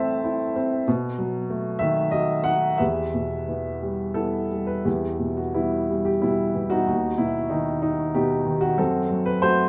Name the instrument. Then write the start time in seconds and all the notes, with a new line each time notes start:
upright piano
Already playing: A2 E3 A3 C4 A4 C5 E5 A5 C6
0.24 E4
0.56 C4
0.88 B2
1.18 F#3
1.50 A3
1.79 D#3 E5
2.11 F#4 D#5
2.44 D#4 F#5
2.78 E2 G4 B4 E5
3.14 B2
3.48 E3
3.82 G3
4.14 B3 E4 A4
4.51 G3
4.67 B4
4.85 E2 B3 E4 G4
5.19 B2
5.37 F#4
5.54 E3 G3 B3 E4
5.90 G3
6.05 G4
6.22 B2 G3 B3 E4
6.54 E3
6.70 B3 D#4 F#4
6.87 D#2
7.18 B2 E4
7.50 D#3 D#4
7.82 D#4
8.14 B2 B3 D#4 G4
8.46 D#3
8.61 F#4
8.78 F#2 C4 F#4 A4
9.11 F#3
9.26 B4
9.42 A3 F#4 A4 C5